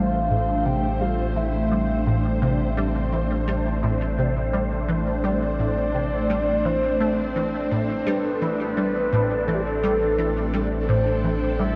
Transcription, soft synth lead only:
Already playing: F5
0.66 G5
1.01 F5
1.36 E5
5.24 D5
6.66 C5
8.07 B4
9.48 A4
9.55 G4
9.62 A4
10.89 C5
11.59 E5

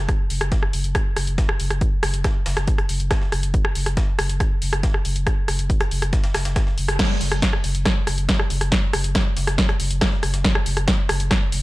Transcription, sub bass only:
0.30 F#1
0.41 F#1
0.73 F#1
0.84 F#1
1.16 F#1
1.27 F#1
1.60 F#1
1.70 F#1
2.03 F#1
2.14 F#1
2.46 F#1
2.57 F#1
2.89 F#1
3.00 F#1
3.32 F#1
3.43 F#1
3.75 F#1
3.86 F#1
4.19 F#1
4.29 F#1
4.62 F#1
4.73 F#1
5.05 F#1
5.16 F#1
5.48 F#1
5.59 F#1
5.91 F#1
6.02 F#1
6.34 F#1
6.45 F#1
6.78 F#1
6.88 F#1
7.21 F#1
7.32 F#1
7.64 F#1
7.75 F#1
8.07 F#1
8.18 F#1
8.50 F#1
8.61 F#1
8.94 F#1
9.04 F#1
9.37 F#1
9.47 F#1
9.80 F#1
9.91 F#1
10.23 F#1
10.34 F#1
10.66 F#1
10.77 F#1
11.09 F#1
11.20 F#1
11.52 F#1

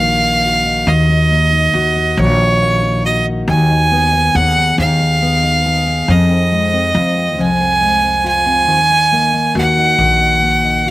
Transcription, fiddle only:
Already playing: F5
0.88 D#5
2.19 C#5
3.05 D#5
3.49 G#5
4.36 F#5
4.79 F5
6.10 D#5
7.40 G#5
8.27 G#5
9.59 F#5

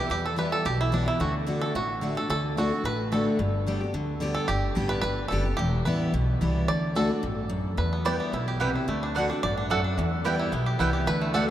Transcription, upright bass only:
0.10 E2
0.65 B1
1.20 D2
1.75 A1
2.29 D2
2.84 A1
3.39 G1
3.94 D2
4.49 G1
4.76 A1
5.03 G1
5.31 F#1
5.58 E1
5.86 A1
6.13 B1
6.41 C2
6.68 D2
7.23 A1
7.78 E2
8.32 B1
8.88 D2
9.43 A1
9.98 E2
10.52 B1
10.80 C2
11.06 D2

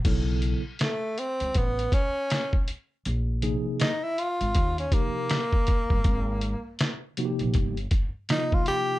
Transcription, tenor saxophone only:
0.82 A3
1.19 C4
1.57 B3
1.94 C#4
3.81 D#4
4.04 E4
4.19 F4
4.79 C#4
4.93 A#3
8.31 D#4
8.54 F4
8.68 G4

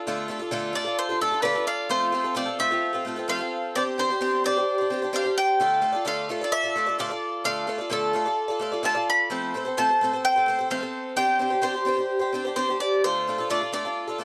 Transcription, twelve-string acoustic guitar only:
0.07 D3 A3 D4 F4 A4
0.28 A3 D4 F4 A4
0.39 D4 F4 A4
0.51 D3 A3 D4 F4 A4
0.73 A3 D4 F4 A4
0.84 D4 F4 A4
1.09 D4 F4 A4
1.21 A3 D4 F4 A4
1.32 D4 F4 A4
1.43 D3 A3 D4 F4 A4
1.55 D4 F4 A4
1.89 F3 A3 C4 F4 A4
2.12 A3 C4 F4 A4
2.24 C4 F4 A4
2.35 F3 A3 C4 F4 A4
2.46 C4 F4 A4
2.59 A3 C4 F4 A4
2.71 C4 F4 A4
2.93 C4 F4 A4
3.05 A3 C4 F4 A4
3.16 C4 F4 A4
3.28 F3 A3 C4 F4 A4
3.38 C4 F4 A4
3.75 C4 D4 G4 C5
3.98 C4 D4 G4 C5
4.10 D4 G4 C5
4.21 C4 D4 G4 C5
4.44 C4 D4 G4 C5
4.57 D4 G4 C5
4.78 D4 G4 C5
4.90 C4 D4 G4 C5
5.02 D4 G4 C5
5.13 C4 D4 G4 C5
5.24 D4 G4 C5
5.60 D3 A3 F4 A4 D5
5.81 A3 F4 A4 D5
5.93 F4 A4 D5
6.05 D3 A3 F4 A4 D5
6.29 A3 F4 A4 D5
6.41 F4 A4 D5
6.63 F4 A4 D5
6.76 A3 F4 A4 D5
6.86 F4 A4 D5
6.99 D3 A3 F4 A4 D5
7.10 F4 A4 D5
7.44 D3 A3 F4 A4 D5
7.67 A3 F4 A4 D5
7.78 F4 A4 D5
7.90 D3 A3 F4 A4 D5
8.13 A3 F4 A4 D5
8.25 F4 A4 D5
8.48 F4 A4 D5
8.59 A3 F4 A4 D5
8.72 F4 A4 D5
8.83 D3 A3 F4 A4 D5
8.95 F4 A4 D5
9.30 F3 A3 C4 A4 C5
9.54 A3 C4 A4 C5
9.65 C4 A4 C5
9.77 F3 A3 C4 A4 C5
9.91 C4 C5
10.01 A3 C4 A4 C5
10.13 C4 A4 C5
10.36 C4 A4 C5
10.46 A3 C4 A4 C5
10.59 C4 A4 C5
10.70 F3 A3 C4 A4 C5
10.80 C4 A4 C5
11.16 C4 D4 G4 C5
11.39 C4 D4 G4 C5
11.50 D4 G4 C5
11.62 C4 D4 G4 C5
11.74 G4 C5
11.85 C4 D4 G4 C5
11.97 D4 G4 C5
12.19 D4 G4 C5
12.33 C4 D4 G4 C5
12.45 D4 G4 C5
12.56 C4 D4 G4 C5
12.69 D4 G4 C5
13.04 D3 A3 D4 F4 A4
13.27 A3 D4 F4 A4
13.38 D4 F4 A4
13.50 D3 A3 D4 F4 A4
13.62 D4 F4 A4
13.72 A3 D4 F4 A4
13.85 D4 F4 A4
14.08 D4 F4 A4
14.18 A3 D4 F4 A4

